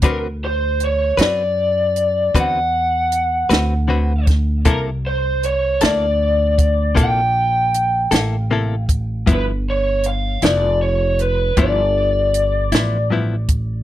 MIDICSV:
0, 0, Header, 1, 5, 480
1, 0, Start_track
1, 0, Tempo, 769231
1, 19, Time_signature, 12, 3, 24, 8
1, 8630, End_track
2, 0, Start_track
2, 0, Title_t, "Lead electric guitar"
2, 0, Program_c, 0, 29
2, 38, Note_on_c, 0, 70, 66
2, 100, Note_off_c, 0, 70, 0
2, 279, Note_on_c, 0, 72, 70
2, 517, Note_off_c, 0, 72, 0
2, 530, Note_on_c, 0, 73, 66
2, 741, Note_off_c, 0, 73, 0
2, 757, Note_on_c, 0, 74, 72
2, 1490, Note_off_c, 0, 74, 0
2, 1492, Note_on_c, 0, 78, 79
2, 2656, Note_off_c, 0, 78, 0
2, 2919, Note_on_c, 0, 70, 68
2, 2982, Note_off_c, 0, 70, 0
2, 3161, Note_on_c, 0, 72, 71
2, 3378, Note_off_c, 0, 72, 0
2, 3403, Note_on_c, 0, 73, 70
2, 3639, Note_off_c, 0, 73, 0
2, 3641, Note_on_c, 0, 74, 77
2, 4353, Note_on_c, 0, 79, 81
2, 4376, Note_off_c, 0, 74, 0
2, 5121, Note_off_c, 0, 79, 0
2, 5121, Note_on_c, 0, 77, 81
2, 5525, Note_off_c, 0, 77, 0
2, 5821, Note_on_c, 0, 71, 81
2, 5881, Note_off_c, 0, 71, 0
2, 6052, Note_on_c, 0, 73, 76
2, 6263, Note_off_c, 0, 73, 0
2, 6279, Note_on_c, 0, 77, 83
2, 6496, Note_off_c, 0, 77, 0
2, 6505, Note_on_c, 0, 74, 79
2, 6747, Note_off_c, 0, 74, 0
2, 6750, Note_on_c, 0, 73, 79
2, 6994, Note_off_c, 0, 73, 0
2, 6998, Note_on_c, 0, 71, 70
2, 7214, Note_off_c, 0, 71, 0
2, 7231, Note_on_c, 0, 74, 71
2, 8159, Note_off_c, 0, 74, 0
2, 8630, End_track
3, 0, Start_track
3, 0, Title_t, "Clean electric guitar"
3, 0, Program_c, 1, 27
3, 20, Note_on_c, 1, 50, 71
3, 21, Note_on_c, 1, 60, 73
3, 28, Note_on_c, 1, 66, 70
3, 28, Note_on_c, 1, 71, 72
3, 164, Note_off_c, 1, 50, 0
3, 165, Note_off_c, 1, 60, 0
3, 168, Note_off_c, 1, 66, 0
3, 168, Note_off_c, 1, 71, 0
3, 733, Note_on_c, 1, 71, 46
3, 744, Note_on_c, 1, 66, 40
3, 745, Note_on_c, 1, 60, 33
3, 882, Note_off_c, 1, 71, 0
3, 888, Note_off_c, 1, 60, 0
3, 888, Note_off_c, 1, 66, 0
3, 1466, Note_on_c, 1, 50, 65
3, 1470, Note_on_c, 1, 71, 74
3, 1472, Note_on_c, 1, 60, 64
3, 1473, Note_on_c, 1, 66, 66
3, 1609, Note_off_c, 1, 50, 0
3, 1612, Note_off_c, 1, 60, 0
3, 1612, Note_off_c, 1, 71, 0
3, 1613, Note_off_c, 1, 66, 0
3, 2181, Note_on_c, 1, 71, 48
3, 2187, Note_on_c, 1, 66, 46
3, 2192, Note_on_c, 1, 60, 44
3, 2328, Note_off_c, 1, 71, 0
3, 2331, Note_off_c, 1, 66, 0
3, 2333, Note_off_c, 1, 60, 0
3, 2421, Note_on_c, 1, 50, 56
3, 2426, Note_on_c, 1, 60, 57
3, 2431, Note_on_c, 1, 66, 58
3, 2434, Note_on_c, 1, 71, 57
3, 2568, Note_off_c, 1, 50, 0
3, 2570, Note_off_c, 1, 60, 0
3, 2573, Note_off_c, 1, 66, 0
3, 2574, Note_off_c, 1, 71, 0
3, 2904, Note_on_c, 1, 48, 69
3, 2905, Note_on_c, 1, 58, 68
3, 2910, Note_on_c, 1, 69, 77
3, 2912, Note_on_c, 1, 64, 75
3, 3050, Note_off_c, 1, 48, 0
3, 3050, Note_off_c, 1, 58, 0
3, 3053, Note_off_c, 1, 69, 0
3, 3054, Note_off_c, 1, 64, 0
3, 3628, Note_on_c, 1, 69, 49
3, 3636, Note_on_c, 1, 64, 45
3, 3640, Note_on_c, 1, 58, 37
3, 3772, Note_off_c, 1, 69, 0
3, 3776, Note_off_c, 1, 64, 0
3, 3778, Note_off_c, 1, 58, 0
3, 4337, Note_on_c, 1, 48, 66
3, 4342, Note_on_c, 1, 58, 69
3, 4345, Note_on_c, 1, 64, 78
3, 4350, Note_on_c, 1, 69, 71
3, 4486, Note_off_c, 1, 48, 0
3, 4489, Note_off_c, 1, 58, 0
3, 4491, Note_off_c, 1, 64, 0
3, 4493, Note_off_c, 1, 69, 0
3, 5062, Note_on_c, 1, 69, 57
3, 5068, Note_on_c, 1, 64, 48
3, 5074, Note_on_c, 1, 58, 42
3, 5208, Note_off_c, 1, 69, 0
3, 5212, Note_off_c, 1, 64, 0
3, 5215, Note_off_c, 1, 58, 0
3, 5309, Note_on_c, 1, 48, 56
3, 5311, Note_on_c, 1, 58, 58
3, 5320, Note_on_c, 1, 64, 64
3, 5320, Note_on_c, 1, 69, 62
3, 5452, Note_off_c, 1, 48, 0
3, 5453, Note_off_c, 1, 58, 0
3, 5457, Note_off_c, 1, 64, 0
3, 5457, Note_off_c, 1, 69, 0
3, 5781, Note_on_c, 1, 43, 68
3, 5787, Note_on_c, 1, 53, 69
3, 5787, Note_on_c, 1, 64, 82
3, 5788, Note_on_c, 1, 59, 72
3, 5928, Note_off_c, 1, 43, 0
3, 5930, Note_off_c, 1, 53, 0
3, 5931, Note_off_c, 1, 59, 0
3, 5931, Note_off_c, 1, 64, 0
3, 6509, Note_on_c, 1, 64, 47
3, 6517, Note_on_c, 1, 59, 43
3, 6520, Note_on_c, 1, 53, 36
3, 6651, Note_off_c, 1, 64, 0
3, 6655, Note_off_c, 1, 59, 0
3, 6656, Note_off_c, 1, 53, 0
3, 7221, Note_on_c, 1, 43, 64
3, 7225, Note_on_c, 1, 53, 75
3, 7226, Note_on_c, 1, 59, 73
3, 7232, Note_on_c, 1, 64, 82
3, 7366, Note_off_c, 1, 43, 0
3, 7368, Note_off_c, 1, 53, 0
3, 7368, Note_off_c, 1, 59, 0
3, 7371, Note_off_c, 1, 64, 0
3, 7939, Note_on_c, 1, 64, 52
3, 7952, Note_on_c, 1, 59, 42
3, 7954, Note_on_c, 1, 53, 42
3, 8084, Note_off_c, 1, 64, 0
3, 8090, Note_off_c, 1, 59, 0
3, 8091, Note_off_c, 1, 53, 0
3, 8177, Note_on_c, 1, 43, 53
3, 8187, Note_on_c, 1, 53, 59
3, 8188, Note_on_c, 1, 59, 61
3, 8194, Note_on_c, 1, 64, 64
3, 8322, Note_off_c, 1, 43, 0
3, 8327, Note_off_c, 1, 53, 0
3, 8328, Note_off_c, 1, 59, 0
3, 8331, Note_off_c, 1, 64, 0
3, 8630, End_track
4, 0, Start_track
4, 0, Title_t, "Upright bass"
4, 0, Program_c, 2, 32
4, 14, Note_on_c, 2, 38, 66
4, 718, Note_off_c, 2, 38, 0
4, 735, Note_on_c, 2, 42, 73
4, 1439, Note_off_c, 2, 42, 0
4, 1466, Note_on_c, 2, 40, 70
4, 2165, Note_off_c, 2, 40, 0
4, 2182, Note_on_c, 2, 38, 79
4, 2884, Note_off_c, 2, 38, 0
4, 2905, Note_on_c, 2, 36, 72
4, 3605, Note_off_c, 2, 36, 0
4, 3633, Note_on_c, 2, 38, 76
4, 4329, Note_off_c, 2, 38, 0
4, 4348, Note_on_c, 2, 34, 68
4, 5046, Note_off_c, 2, 34, 0
4, 5065, Note_on_c, 2, 33, 81
4, 5763, Note_off_c, 2, 33, 0
4, 5786, Note_on_c, 2, 31, 73
4, 6483, Note_off_c, 2, 31, 0
4, 6506, Note_on_c, 2, 29, 76
4, 7202, Note_off_c, 2, 29, 0
4, 7219, Note_on_c, 2, 31, 74
4, 7918, Note_off_c, 2, 31, 0
4, 7936, Note_on_c, 2, 33, 80
4, 8630, Note_off_c, 2, 33, 0
4, 8630, End_track
5, 0, Start_track
5, 0, Title_t, "Drums"
5, 11, Note_on_c, 9, 42, 73
5, 16, Note_on_c, 9, 36, 89
5, 73, Note_off_c, 9, 42, 0
5, 78, Note_off_c, 9, 36, 0
5, 499, Note_on_c, 9, 42, 49
5, 562, Note_off_c, 9, 42, 0
5, 738, Note_on_c, 9, 42, 79
5, 756, Note_on_c, 9, 38, 97
5, 801, Note_off_c, 9, 42, 0
5, 818, Note_off_c, 9, 38, 0
5, 1223, Note_on_c, 9, 42, 48
5, 1285, Note_off_c, 9, 42, 0
5, 1464, Note_on_c, 9, 36, 76
5, 1467, Note_on_c, 9, 42, 73
5, 1526, Note_off_c, 9, 36, 0
5, 1529, Note_off_c, 9, 42, 0
5, 1946, Note_on_c, 9, 42, 54
5, 2008, Note_off_c, 9, 42, 0
5, 2185, Note_on_c, 9, 42, 66
5, 2203, Note_on_c, 9, 38, 91
5, 2248, Note_off_c, 9, 42, 0
5, 2265, Note_off_c, 9, 38, 0
5, 2665, Note_on_c, 9, 42, 53
5, 2666, Note_on_c, 9, 36, 69
5, 2682, Note_on_c, 9, 38, 28
5, 2727, Note_off_c, 9, 42, 0
5, 2728, Note_off_c, 9, 36, 0
5, 2745, Note_off_c, 9, 38, 0
5, 2901, Note_on_c, 9, 42, 67
5, 2905, Note_on_c, 9, 36, 85
5, 2963, Note_off_c, 9, 42, 0
5, 2967, Note_off_c, 9, 36, 0
5, 3389, Note_on_c, 9, 42, 48
5, 3451, Note_off_c, 9, 42, 0
5, 3623, Note_on_c, 9, 42, 74
5, 3640, Note_on_c, 9, 38, 96
5, 3685, Note_off_c, 9, 42, 0
5, 3703, Note_off_c, 9, 38, 0
5, 4108, Note_on_c, 9, 36, 64
5, 4109, Note_on_c, 9, 42, 53
5, 4171, Note_off_c, 9, 36, 0
5, 4172, Note_off_c, 9, 42, 0
5, 4349, Note_on_c, 9, 36, 72
5, 4349, Note_on_c, 9, 42, 71
5, 4411, Note_off_c, 9, 36, 0
5, 4411, Note_off_c, 9, 42, 0
5, 4831, Note_on_c, 9, 42, 58
5, 4893, Note_off_c, 9, 42, 0
5, 5064, Note_on_c, 9, 42, 77
5, 5081, Note_on_c, 9, 38, 85
5, 5126, Note_off_c, 9, 42, 0
5, 5144, Note_off_c, 9, 38, 0
5, 5546, Note_on_c, 9, 36, 70
5, 5548, Note_on_c, 9, 42, 56
5, 5609, Note_off_c, 9, 36, 0
5, 5610, Note_off_c, 9, 42, 0
5, 5786, Note_on_c, 9, 36, 97
5, 5786, Note_on_c, 9, 42, 67
5, 5849, Note_off_c, 9, 36, 0
5, 5849, Note_off_c, 9, 42, 0
5, 6262, Note_on_c, 9, 42, 48
5, 6324, Note_off_c, 9, 42, 0
5, 6502, Note_on_c, 9, 42, 69
5, 6519, Note_on_c, 9, 38, 99
5, 6564, Note_off_c, 9, 42, 0
5, 6582, Note_off_c, 9, 38, 0
5, 6981, Note_on_c, 9, 42, 48
5, 7044, Note_off_c, 9, 42, 0
5, 7218, Note_on_c, 9, 42, 72
5, 7220, Note_on_c, 9, 36, 71
5, 7280, Note_off_c, 9, 42, 0
5, 7283, Note_off_c, 9, 36, 0
5, 7700, Note_on_c, 9, 42, 54
5, 7762, Note_off_c, 9, 42, 0
5, 7937, Note_on_c, 9, 42, 69
5, 7954, Note_on_c, 9, 38, 94
5, 7999, Note_off_c, 9, 42, 0
5, 8017, Note_off_c, 9, 38, 0
5, 8414, Note_on_c, 9, 42, 60
5, 8416, Note_on_c, 9, 36, 75
5, 8477, Note_off_c, 9, 42, 0
5, 8478, Note_off_c, 9, 36, 0
5, 8630, End_track
0, 0, End_of_file